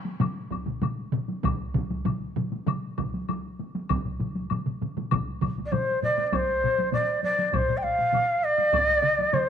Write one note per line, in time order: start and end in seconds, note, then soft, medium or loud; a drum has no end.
0.05 taiko high medium
0.20 taiko low-mid loud
0.20 taiko mid loud
0.20 taiko high medium
0.20 high woodblock soft
0.51 taiko medium
0.51 taiko high medium
0.51 high woodblock soft
0.66 taiko low-mid medium
0.66 taiko mid medium
0.66 taiko high medium
0.82 taiko low-mid medium
0.82 taiko mid medium
0.82 taiko high medium
0.82 high woodblock soft
1.12 taiko low-mid medium
1.12 taiko mid loud
1.12 taiko high medium
1.28 taiko high medium
1.44 taiko loud
1.44 taiko low-mid medium
1.44 taiko mid loud
1.44 taiko high medium
1.44 high woodblock medium
1.74 taiko medium
1.74 taiko low-mid medium
1.74 taiko mid medium
1.74 taiko high medium
1.90 taiko high medium
2.05 taiko low-mid medium
2.05 taiko mid loud
2.05 taiko high medium
2.05 high woodblock soft
2.36 taiko low-mid medium
2.36 taiko mid medium
2.36 taiko high soft
2.52 taiko high medium
2.67 taiko low-mid loud
2.67 taiko mid loud
2.67 taiko high medium
2.67 high woodblock soft
2.98 taiko medium
2.98 taiko low-mid medium
2.98 taiko mid medium
2.98 taiko high medium
2.98 high woodblock soft
3.14 taiko high soft
3.29 taiko high medium
3.29 high woodblock soft
3.59 taiko high soft
3.75 taiko high medium
3.89 taiko loud
3.89 taiko low-mid medium
3.89 taiko mid medium
3.89 taiko high medium
3.89 high woodblock medium
4.05 taiko low-mid medium
4.05 taiko mid medium
4.20 taiko low-mid medium
4.20 taiko mid medium
4.20 taiko high medium
4.35 taiko high soft
4.50 taiko low-mid medium
4.50 taiko mid medium
4.50 taiko high medium
4.50 high woodblock soft
4.66 taiko low-mid medium
4.66 taiko mid medium
4.82 taiko low-mid medium
4.82 taiko mid medium
4.82 taiko high medium
4.97 taiko low-mid medium
4.97 taiko mid medium
4.97 taiko high medium
5.11 taiko medium
5.11 taiko low-mid loud
5.11 taiko mid loud
5.11 taiko high medium
5.11 high woodblock medium
5.42 taiko medium
5.42 taiko low-mid medium
5.42 taiko mid medium
5.42 taiko high medium
5.42 high woodblock soft
5.58 taiko high medium
5.66 5.73 D5 medium
5.72 6.02 C5 medium
5.72 taiko low-mid medium
5.72 taiko mid medium
5.72 taiko high medium
5.72 high woodblock soft
6.02 6.27 D5 medium
6.02 taiko low-mid medium
6.02 taiko mid medium
6.02 taiko high soft
6.18 taiko high soft
6.27 6.36 D5 medium
6.32 6.93 C5 medium
6.32 taiko medium
6.32 taiko high medium
6.32 high woodblock soft
6.64 taiko low-mid medium
6.78 taiko high soft
6.93 7.21 D5 medium
6.93 taiko low-mid medium
6.93 taiko high medium
6.93 high woodblock soft
7.23 7.48 D5 medium
7.23 taiko high soft
7.39 taiko high soft
7.48 7.56 D5 medium
7.53 7.79 C5 medium
7.53 taiko medium
7.53 taiko low-mid medium
7.53 taiko high medium
7.53 high woodblock soft
7.69 taiko low-mid medium
7.77 7.85 G5 medium
7.83 8.45 F5 medium
7.83 taiko low-mid medium
7.99 taiko low-mid medium
8.13 taiko low-mid medium
8.13 taiko high medium
8.13 high woodblock soft
8.44 9.35 D5 medium
8.58 taiko high soft
8.73 taiko medium
8.73 taiko high medium
8.73 high woodblock soft
9.03 taiko mid medium
9.19 taiko high soft
9.33 9.49 C5 medium
9.33 taiko mid medium
9.33 taiko high medium
9.33 high woodblock soft